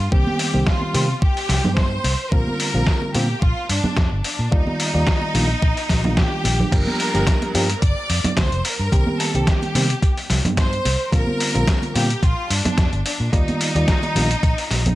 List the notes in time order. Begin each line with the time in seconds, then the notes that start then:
Already playing: F4
0.11 C2 D#3 G3 A#3 C4 G4, kick
0.27 high conga
0.39 open hi-hat
0.54 C2 D#3 G3 A#3 C4 G4, muted conga
0.67 F4, kick, snare
0.82 muted conga
0.93 C3 D#3 G3 A#3 C4 G4, open hi-hat, high conga
1.22 G4, kick
1.37 open hi-hat
1.49 C2, snare, open hi-hat
1.64 G2, high conga, low conga
1.77 C5, kick, snare
2.04 C2, open hi-hat, muted conga
2.31 A#1 D3 G3 A#3 C4 F4 A#4, kick
2.47 high conga
2.60 open hi-hat
2.74 A#1 D3 G3 A#3 C4 F4
2.87 kick, snare
3.02 muted conga
3.14 A#2 D3 G3 A#3 C4 F4 G4, open hi-hat, high conga
3.42 A#1 F4, kick
3.69 G2 D4, open hi-hat
3.84 muted fingered electric bass stroke, high conga, low conga
3.97 F2, kick, snare
4.12 G1
4.24 D4, open hi-hat
4.39 A#2
4.51 D#2 D#3 G3 A#3 D#4 F4 D5, kick
4.67 high conga
4.80 open hi-hat
4.94 D#2 D#3 G3 A#3 F4 D5, muted conga
5.07 kick, snare
5.22 muted conga
5.34 A#1 D#3 G3 A#3 D4 F4, open hi-hat, high conga
5.62 A#1, kick
5.77 open hi-hat
5.89 A#1, kick, snare, open hi-hat
6.04 D#3 G3 A#3 D4 F4, high conga, low conga
6.17 G4, kick, snare
6.44 A#1, open hi-hat, muted conga
6.60 low conga
6.72 G1 F3 G3 A#3 D4 G4 A#4, kick, closed hi-hat, crash
6.87 high conga
7.00 open hi-hat
7.14 G1 F3 G3 A#3 D4 G4, closed hi-hat
7.27 kick, snare, closed hi-hat
7.42 closed hi-hat, muted conga
7.54 G2 F3 G3 A#3 D4 G4 A#4, open hi-hat, high conga
7.70 closed hi-hat
7.82 G1 D5, kick, closed hi-hat
8.10 F2, open hi-hat
8.24 muted fingered electric bass stroke, closed hi-hat, high conga, low conga
8.37 D2 C5, kick, snare, closed hi-hat
8.52 F1, closed hi-hat
8.65 A#4, open hi-hat
8.79 G2
8.92 C2 D#3 G3 A#3 C4 G4, kick, closed hi-hat
9.07 high conga
9.20 A4, open hi-hat
9.34 C2 D#3 G3 A#3 C4 G4, closed hi-hat, muted conga
9.47 G4, kick, snare, closed hi-hat
9.62 closed hi-hat, muted conga
9.75 C3 D#3 G3 A#3 C4 G4, open hi-hat, high conga
9.90 closed hi-hat
10.03 kick, closed hi-hat
10.18 open hi-hat
10.30 C2, snare, open hi-hat
10.45 G2, closed hi-hat, high conga, low conga
10.57 C5, kick, snare, closed hi-hat
10.73 closed hi-hat
10.85 C2, open hi-hat, muted conga
11.12 A#1 D3 G3 A#3 C4 F4 A#4, kick, closed hi-hat
11.27 high conga
11.40 open hi-hat
11.54 A#1 D3 G3 A#3 C4 F4, closed hi-hat
11.68 kick, snare, closed hi-hat
11.82 closed hi-hat, muted conga
11.95 A#2 D3 G3 A#3 C4 F4 G4, open hi-hat, high conga
12.10 closed hi-hat
12.23 A#1 F4, kick, closed hi-hat
12.50 G2 D4, open hi-hat
12.65 muted fingered electric bass stroke, closed hi-hat, high conga, low conga
12.78 F2, kick, snare, closed hi-hat
12.93 G1, closed hi-hat
13.06 D4, open hi-hat
13.20 A#2
13.32 D#2 D#3 G3 A#3 D#4 F4 D5, kick, closed hi-hat
13.48 closed hi-hat, high conga
13.61 open hi-hat
13.75 D#2 D#3 G3 A#3 F4 D5, closed hi-hat, muted conga
13.88 kick, snare, closed hi-hat
14.03 closed hi-hat, muted conga
14.15 A#1 D#3 G3 A#3 D4 F4, open hi-hat, high conga
14.31 closed hi-hat
14.43 A#1, kick, closed hi-hat
14.58 open hi-hat
14.71 A#1, snare, open hi-hat
14.86 closed hi-hat, high conga, low conga